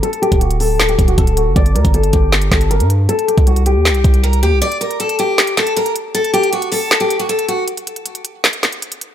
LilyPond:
<<
  \new Staff \with { instrumentName = "Steel-string acoustic guitar" } { \time 4/4 \key c \dorian \tempo 4 = 157 a'8 g'8 fis'8 a'8. g'8 fis'16 a'8 fis'8 | d''8 bes'8 a'8 g'4 a'8 bes'8 r8 | a'8 g'8 fis'8 g'4. bes'8 g'8 | d''8 bes'8 a'8 g'4 a'8 bes'8 r8 |
a'8 g'8 fis'8 a'8. g'8 fis'16 a'8 fis'8 | r1 | }
  \new Staff \with { instrumentName = "808-style bass" } { \clef bass \time 4/4 \key c \dorian r8. d,,4.~ d,,16 d,,8 d,,8. fis,,16 | g,,8 d,16 g,,8. g,,4 g,,8. g,8. | r8. c,4 ees,16. c,16. c,4 ees,16 c,16 | r1 |
r1 | r1 | }
  \new DrumStaff \with { instrumentName = "Drums" } \drummode { \time 4/4 hh16 hh16 hh16 <hh bd>16 hh16 hh16 hho8 <hc hh sn>16 hh16 <hh bd>16 hh16 <hh bd>16 hh16 hh8 | <hh bd>16 hh16 hh16 <hh bd>16 hh16 hh16 <hh bd>8 <hc hh sn>16 hh16 <hc hh bd sn>16 hh16 hh16 hh16 hh8 | hh16 hh16 hh16 <hh bd>16 hh16 hh16 hh8 <hc hh sn>16 hh16 <hh bd>16 hh16 hh16 hh16 hh8 | hh16 hh16 hh16 hh16 hh16 hh16 hh8 <hc hh sn>16 hh16 <hc hh sn>16 hh16 hh16 hh16 hh8 |
hh16 hh16 hh16 hh16 hh16 hh16 hho8 <hc hh sn>16 hh16 hh16 hh16 hh16 hh16 hh8 | hh16 hh16 hh16 hh16 hh16 hh16 hh8 <hc hh sn>16 hh16 <hc hh sn>16 hh16 hh16 hh16 hh8 | }
>>